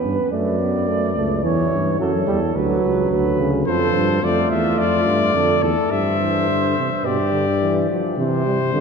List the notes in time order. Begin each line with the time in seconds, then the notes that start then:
Already playing: B3 B4
0.04 G2
0.32 F#2 A3 D5
0.60 B3
0.88 A3
1.15 C#2 A3
1.43 E2 E3 C#5
1.72 G2
1.99 F#2 F#3 A4
2.27 E2 G3
2.55 D2 F#3 B4
2.83 C#2
3.11 D2 B4
3.39 C#3
3.66 F2 F3 A4 C5
3.95 G2
4.23 F2 A3 F4 D5
4.51 E2 E5
4.78 F2 D5
5.06 G2
5.34 F2 D3 A4
5.62 E2 A4
5.91 G2 G3 C5 E5
6.20 E3
6.48 D3
6.77 C3
7.04 G2 B2 G4 D5
7.33 D3
7.62 E3
7.90 F3
8.18 C3 E3 C5
8.46 G3
8.74 D3 G3